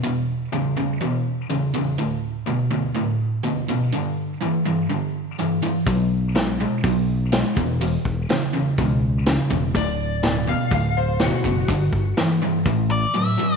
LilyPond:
<<
  \new Staff \with { instrumentName = "Lead electric guitar" } { \time 4/4 \key d \major \tempo 4 = 124 r1 | r1 | r1 | r1 |
r1 | r1 | r2 r8 d''8 e''4 | }
  \new Staff \with { instrumentName = "Electric slide guitar" } { \time 4/4 \key d \major r1 | r1 | r1 | r1 |
r1 | d''4. f''8 f''8 c''8 fis'4~ | fis'4 r2. | }
  \new Staff \with { instrumentName = "Overdriven electric guitar" } { \clef bass \time 4/4 \key d \major <e, b,>4 <e, cis>8 <e, cis>8 <e, b,>4 <e, cis>8 <e, cis>8 | <d, a,>4 <d, b,>8 <d, b,>8 <d, a,>4 <d, b,>8 <d, b,>8 | <g, d>4 <g, e>8 <g, e>8 <g, d>4 <g, e>8 <g, e>8 | <b, fis>4 <b, gis>8 <b, gis>8 <b, fis>4 <b, gis>8 <e, b,>8 |
<e, b,>4 <e, cis>8 <e, cis>8 <e, b,>4 <e, cis>8 <e, cis>8 | <d, a,>4 <d, b,>8 <d, b,>8 <d, a,>4 <d, b,>8 <d, b,>8 | <g, d>4 <g, e>8 <g, e>8 <a, e>4 <a, fis>8 <a, fis>8 | }
  \new Staff \with { instrumentName = "Overdriven electric guitar" } { \clef bass \time 4/4 \key d \major <e, b,>4 <e, cis>8 <e, cis>8 <e, b,>4 <e, cis>8 <e, cis>8 | <d, a,>4 <d, b,>8 <d, b,>8 <d, a,>4 <d, b,>8 <d, b,>8 | <g, d>4 <g, e>8 <g, e>8 <g, d>4 <g, e>8 <g, e>8 | <b, fis>4 <b, gis>8 <b, gis>8 <b, fis>4 <b, gis>8 <e, b,>8 |
<e, b,>4 <e, cis>8 <e, cis>8 <e, b,>4 <e, cis>8 <e, cis>8 | <d, a,>4 <d, b,>8 <d, b,>8 <d, a,>4 <d, b,>8 <d, b,>8 | <g, d>4 <g, e>8 <g, e>8 <a, e>4 <a, fis>8 <a, fis>8 | }
  \new Staff \with { instrumentName = "Fingered electric bass" } { \clef bass \time 4/4 \key d \major r1 | r1 | r1 | b,,2 b,,4. e,,8~ |
e,,8 e,,8 r4 cis,4. e,,8 | d,,2 d,,4. fis,,8 | g,,8 g,,8 r4 a,,4 r4 | }
  \new DrumStaff \with { instrumentName = "Drums" } \drummode { \time 4/4 r4 r4 r4 r4 | r4 r4 r4 r4 | r4 r4 r4 r4 | <hho bd>4 <hho sn>4 <hho bd>4 <hho sn>8 bd8 |
hho8 bd8 <hho sn>4 <hho bd>4 <hho sn>8 bd8 | <hho bd>4 <hho sn>4 <hho bd>4 <hho sn>8 bd8 | <hho bd>8 bd8 <hho sn>4 <hho bd>4 r4 | }
>>